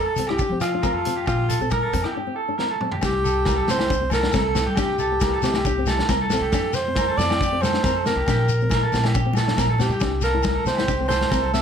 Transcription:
Already playing: A4
0.06 A4
0.16 C2 C4, closed hi-hat, muted conga, shekere
0.27 E4 G4, cross-stick, low agogo
0.38 D4 G4, kick, muted conga, shekere
0.49 F3 C4
0.61 F4, cross-stick, closed hi-hat, muted conga, low agogo, shekere
0.74 D4
0.82 C4 A#4, kick, cross-stick, high conga, low agogo, shekere
0.93 F2 A4
1.05 C4, closed hi-hat, shekere
1.16 G4
1.26 A#1 F4 G4, muted nylon-string guitar stroke, kick, cross-stick, muted conga, low agogo, shekere
1.49 A4, closed hi-hat, shekere
1.60 A#1 C4 A4, shekere
1.70 A#4, kick, cross-stick, high conga, low agogo, shekere
1.83 A4
1.93 F2 C4, kick, closed hi-hat, muted conga, high conga, shekere
2.02 E4 G4, cross-stick, low agogo
2.15 D4 G4
2.27 C4
2.36 A4
2.48 D4
2.58 C4 A#4, snare
2.70 A4
2.81 C4, mid tom
2.92 G4, floor tom
3.01 C2 D4 G4, kick, snare, muted conga, low agogo, shekere
3.24 A4, shekere
3.45 A#4, kick, snare, muted conga, high conga, low agogo, shekere
3.56 A4
3.68 C2 C4 C5, snare, shekere
3.79 E4 G4, snare, low agogo
3.90 D4, muted clean electric guitar stroke, kick, muted conga, shekere
4.01 C4
4.10 A4 A#4, snare, muted conga, high conga, low agogo, shekere
4.23 D4, snare
4.31 C2 C4 A4 A#4, kick, snare, high conga, low agogo, shekere
4.45 A4
4.55 C4, snare, shekere
4.66 G2 G4 A4
4.76 C2 D4 G4, kick, snare, low agogo, shekere
4.99 A4, shekere
5.12 muted nylon-string guitar stroke
5.20 A#4, kick, snare, muted conga, high conga, low agogo, shekere
5.33 A4
5.42 C2 C4 G4, snare, shekere
5.54 E4 G4, snare, low agogo, shekere
5.65 D4 G4, kick, muted conga, shekere
5.78 C4
5.86 A4, snare, muted conga, high conga, low agogo, shekere
5.99 D4, snare
6.08 C2 C4 A#4, kick, snare, high conga, low agogo, shekere
6.21 A4
6.30 C4 A4, snare, shekere
6.41 C2 G4
6.52 F2 D4 G4, kick, snare, low agogo, shekere
6.73 C5, snare, shekere
6.88 C4
6.95 A#4, kick, snare, muted conga, high conga, low agogo, shekere
7.08 A4
7.17 F2 C4 D5, snare, shekere
7.30 E4 G4, snare, low agogo, shekere
7.40 D4 G4, kick, snare, shekere
7.52 C4
7.61 A4 C5, snare, muted conga, high conga, low agogo, shekere
7.73 D4, snare
7.83 F2 C4 A#4, kick, snare, high conga, low agogo, shekere
7.96 A4
8.06 C4 A#4, snare, shekere
8.16 C2 G4
8.26 A#1 D4 G4, kick, snare, muted conga, low agogo, shekere
8.49 shekere
8.61 C4, shekere
8.70 A#4, kick, snare, muted conga, high conga, low agogo, shekere
8.83 A4
8.92 A#1 C4, snare, shekere
9.03 E4 G4, snare, low agogo, shekere
9.13 D4 G4, kick, muted conga, shekere
9.26 C4
9.33 A4, snare, high conga, low agogo, shekere
9.48 D4, snare, shekere
9.56 A#1 C4 A#4, kick, snare, high conga, low agogo, shekere
9.67 A4, high conga
9.78 C4 G4, snare, low conga, shekere
9.89 G2 G4, low conga, shekere
9.99 C2 D4, muted clean electric guitar stroke, kick, snare, muted conga, low agogo, shekere
10.21 A4 A#4, snare, shekere
10.34 E4
10.42 A#4, kick, snare, muted conga, high conga, low agogo, shekere
10.55 A4
10.65 C2 C4 C5, snare, shekere
10.75 G4, snare, low agogo, shekere
10.79 E4
10.87 D4 G4, kick, snare, muted conga, shekere
11.00 C4
11.08 A4 C5, snare, muted conga, high conga, low agogo, shekere
11.21 D4, snare
11.30 C2 C4 A#4, kick, snare, high conga, low agogo, shekere
11.42 A4
11.54 C4 E5, snare, shekere

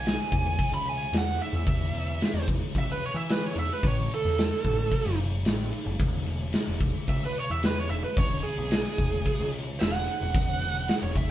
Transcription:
Already playing: B1 G#5
0.06 snare, crash
0.32 E2, kick, crash
0.59 kick, crash
0.72 C#2 B5
0.86 G#5, crash
1.12 E2, snare, crash
1.18 F#5
1.40 E5, crash
1.53 E2
1.67 kick, crash
1.93 E2, crash
2.21 snare, crash
2.34 E2
2.48 kick, crash
2.75 C#2 E5, kick, crash
2.92 B4
3.03 C#5, crash
3.14 E3 E5
3.29 B4, snare, crash
3.46 C#5
3.56 E2 E5, crash
3.73 B4
3.83 A1 C#5, kick, crash
4.11 A4, crash
4.25 E2, snare
4.38 snare, crash
4.65 A1, kick, crash
4.92 kick, crash
5.05 F#1, snare
5.18 crash
5.45 A1, snare, crash
5.73 crash
5.86 F#1
5.99 E1, kick, crash
6.26 E1, crash
6.53 snare, crash
6.67 E1
6.80 kick, crash
7.08 C#2 E5, kick, crash
7.25 B4
7.35 C#5, crash
7.50 E2 E5
7.63 B4, snare, crash
7.79 C#5
7.90 E1 E5, crash
8.04 B4
8.17 E1 C#5, kick, crash
8.43 G#4, crash
8.58 B1
8.71 snare, crash
8.98 E1, kick, crash
9.26 kick, crash
9.40 C#2, snare
9.53 crash
9.80 E1 E5, snare, crash
9.94 F#5
10.08 crash
10.21 E1
10.35 kick, crash
10.62 E1, crash
10.88 snare, crash
11.02 E1 C#5
11.15 E5, kick, crash

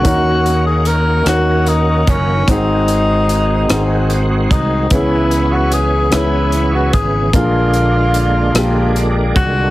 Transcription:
Already playing: F#4
0.03 D#2 D#3 A#3 C#4 D#4 F#4 A#4, kick, closed hi-hat
0.46 closed hi-hat
0.66 G#4
0.85 A#4, closed hi-hat
1.25 D#2 C#4 D#4 F#4 A#4, cross-stick, closed hi-hat
1.66 D#4, closed hi-hat
2.07 F#1 C#4, kick, closed hi-hat
2.48 G#1 G#2 D#3 G#3 B3 C4 D#4 F#4, kick, closed hi-hat
2.52 G#4
2.56 C4
2.88 closed hi-hat
3.29 closed hi-hat
3.68 G#1 C4 D#4 F#4, cross-stick, closed hi-hat
3.72 G#4
4.10 closed hi-hat
4.51 C2 D#4, kick, closed hi-hat
4.90 C#2 C#3 E3 B3 C#4 E4 G#4, kick, closed hi-hat
4.95 G#4
5.31 closed hi-hat
5.52 F#4
5.72 G#4, closed hi-hat
6.10 C#2 B3 C#4 E4, cross-stick, closed hi-hat
6.15 E4 G#4
6.52 closed hi-hat
6.75 F#4
6.93 G#1 G#4, kick, closed hi-hat
7.33 A#1 A#2 D3 G#3 A#3 D4 F4, kick, closed hi-hat
7.37 G#4
7.74 closed hi-hat
8.14 closed hi-hat
8.54 A#1 A#3 D4 F4, cross-stick, closed hi-hat
8.58 G4
8.96 closed hi-hat
9.36 C2 F#4, kick, closed hi-hat

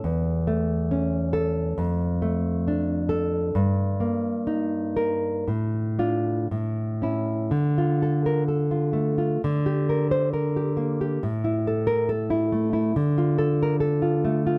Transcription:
0.04 E2
0.47 A3
0.91 C#4
1.33 A4
1.78 F2
2.22 A3
2.68 D4
3.09 A4
3.55 G2
4.00 A#3
4.47 D#4
4.97 A#4
5.48 A2
5.99 D4 F4
6.51 A2
7.02 C#4 E4
7.51 D3
7.78 F4
8.02 A4
8.26 A#4
8.48 A4
8.71 F4
8.93 A3
9.18 F4
9.44 D3
9.66 G4
9.89 A#4
10.11 C5
10.33 A#4
10.56 G4
10.77 A#3
11.01 G4
11.23 A2
11.44 E4
11.67 A4
11.87 A#4
12.09 A4
12.30 E4
12.52 A3
12.73 E4
12.96 D3
13.18 F4
13.38 A4
13.63 A#4
13.80 A4
14.02 F4
14.25 A3
14.47 F4

